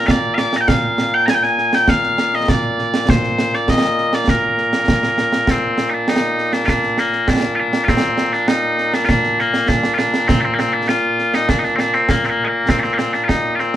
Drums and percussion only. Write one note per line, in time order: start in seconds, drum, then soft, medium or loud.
0.08 concert bass drum medium
0.08 snare loud
0.38 snare medium
0.53 snare medium
0.68 concert bass drum medium
0.68 snare loud
0.98 snare medium
1.28 snare medium
1.43 snare soft
1.58 snare soft
1.73 snare medium
1.88 concert bass drum medium
1.88 snare medium
2.03 snare soft
2.18 snare medium
2.33 snare soft
2.48 concert bass drum medium
2.48 snare loud
2.79 snare soft
2.94 snare medium
3.09 concert bass drum medium
3.09 snare loud
3.24 snare soft
3.38 snare medium
3.54 snare soft
3.68 concert bass drum medium
3.68 snare medium
3.98 snare soft
4.13 snare medium
4.28 concert bass drum medium
4.28 snare medium
4.58 snare soft
4.73 snare medium
4.88 concert bass drum medium
4.88 snare loud
5.03 snare medium
5.18 snare medium
5.33 snare medium
5.47 concert bass drum soft
5.47 snare medium
5.78 snare medium
6.08 snare medium
6.38 snare soft
6.53 snare medium
6.68 concert bass drum soft
6.68 snare medium
6.83 snare soft
6.98 snare medium
7.13 snare soft
7.28 concert bass drum soft
7.28 snare medium
7.43 snare soft
7.73 snare medium
7.88 concert bass drum medium
7.88 snare medium
8.03 snare soft
8.18 snare medium
8.33 snare soft
8.48 snare medium
8.78 snare soft
8.94 snare medium
9.09 concert bass drum medium
9.09 snare medium
9.24 snare soft
9.39 snare soft
9.54 snare medium
9.68 concert bass drum soft
9.68 snare medium
9.83 snare medium
9.99 snare medium
10.14 snare medium
10.29 concert bass drum medium
10.29 snare loud
10.59 snare medium
10.89 snare medium
11.19 snare soft
11.34 snare medium
11.49 concert bass drum medium
11.49 snare medium
11.64 snare soft
11.79 snare medium
11.94 snare soft
12.09 concert bass drum medium
12.09 snare medium
12.24 snare soft
12.69 concert bass drum medium
12.69 snare medium
12.84 snare soft
12.99 snare medium
13.14 snare soft
13.29 concert bass drum soft
13.29 snare medium
13.59 snare soft